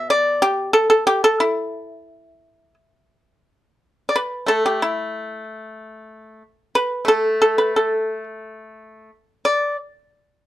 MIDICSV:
0, 0, Header, 1, 2, 480
1, 0, Start_track
1, 0, Tempo, 630915
1, 343, Time_signature, 2, 2, 24, 8
1, 828, Tempo, 682594
1, 2748, Tempo, 665188
1, 3708, Tempo, 642398
1, 5148, Tempo, 670391
1, 7574, End_track
2, 0, Start_track
2, 0, Title_t, "Pipa"
2, 0, Program_c, 0, 105
2, 0, Note_on_c, 0, 47, 64
2, 77, Note_on_c, 0, 74, 96
2, 311, Note_off_c, 0, 74, 0
2, 320, Note_on_c, 0, 67, 106
2, 553, Note_off_c, 0, 67, 0
2, 558, Note_on_c, 0, 69, 102
2, 674, Note_off_c, 0, 69, 0
2, 683, Note_on_c, 0, 69, 92
2, 808, Note_off_c, 0, 69, 0
2, 812, Note_on_c, 0, 67, 100
2, 821, Note_off_c, 0, 47, 0
2, 928, Note_off_c, 0, 67, 0
2, 935, Note_on_c, 0, 69, 100
2, 1048, Note_off_c, 0, 69, 0
2, 1048, Note_on_c, 0, 64, 83
2, 1989, Note_off_c, 0, 64, 0
2, 2943, Note_on_c, 0, 74, 59
2, 2990, Note_off_c, 0, 74, 0
2, 2991, Note_on_c, 0, 71, 73
2, 3214, Note_off_c, 0, 71, 0
2, 3214, Note_on_c, 0, 57, 47
2, 3227, Note_on_c, 0, 69, 84
2, 3341, Note_off_c, 0, 69, 0
2, 3352, Note_on_c, 0, 67, 65
2, 3463, Note_off_c, 0, 67, 0
2, 3473, Note_on_c, 0, 64, 71
2, 3921, Note_off_c, 0, 64, 0
2, 4656, Note_off_c, 0, 57, 0
2, 4906, Note_on_c, 0, 71, 88
2, 5127, Note_on_c, 0, 57, 53
2, 5132, Note_off_c, 0, 71, 0
2, 5152, Note_on_c, 0, 69, 85
2, 5372, Note_off_c, 0, 69, 0
2, 5391, Note_on_c, 0, 69, 75
2, 5502, Note_off_c, 0, 69, 0
2, 5510, Note_on_c, 0, 71, 71
2, 5623, Note_off_c, 0, 71, 0
2, 5640, Note_on_c, 0, 69, 62
2, 5977, Note_off_c, 0, 69, 0
2, 6595, Note_off_c, 0, 57, 0
2, 6847, Note_on_c, 0, 74, 76
2, 7069, Note_off_c, 0, 74, 0
2, 7574, End_track
0, 0, End_of_file